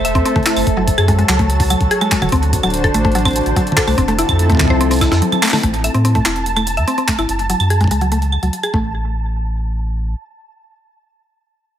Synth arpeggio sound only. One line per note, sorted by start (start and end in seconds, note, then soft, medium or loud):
0.05 0.15 E5 loud
0.15 0.24 C4 medium
0.25 0.34 C4 medium
0.36 0.46 A3 medium
0.46 0.51 E4 medium
0.77 0.86 F#3 medium
0.98 1.08 G#4 loud
1.08 1.17 G#3 medium
1.19 1.27 G#3 medium
1.29 1.39 F#3 medium
1.39 1.44 A3 medium
1.70 1.79 F#3 medium
1.91 2.01 G#4 loud
2.01 2.10 G#3 medium
2.12 2.20 G#3 medium
2.22 2.32 F#3 medium
2.32 2.37 C4 medium
2.63 2.72 F#3 medium
2.84 2.94 A4 loud
2.94 3.03 A3 medium
3.05 3.13 A3 medium
3.15 3.25 F#3 medium
3.25 3.30 C4 medium
3.56 3.65 F#3 medium
3.77 3.87 A4 loud
3.87 3.96 A3 medium
3.98 4.06 C4 medium
4.08 4.18 A3 medium
4.19 4.24 E4 medium
4.50 4.58 A3 medium
4.70 4.80 C5 loud
4.81 4.89 C4 medium
4.91 4.99 C4 medium
5.01 5.06 E4 medium
5.12 5.20 E4 medium
5.43 5.48 A3 medium
5.53 5.58 A3 medium
5.63 5.72 A3 medium
5.84 5.94 E5 loud
5.94 6.03 C4 medium
6.05 6.13 C4 medium
6.15 6.25 A3 medium
6.25 6.31 E4 medium
6.57 6.65 A3 medium
6.77 6.87 E5 loud
6.88 6.96 C4 medium
6.98 7.06 C4 medium
7.08 7.18 A3 medium
7.19 7.24 E4 medium
7.50 7.58 F#3 medium
7.70 7.80 G#4 loud
7.81 7.89 G#3 medium
7.91 7.99 G#3 medium
8.01 8.11 F#3 medium
8.12 8.17 A3 medium
8.43 8.51 F#3 medium
8.63 8.73 G#4 loud
8.74 9.12 A3 medium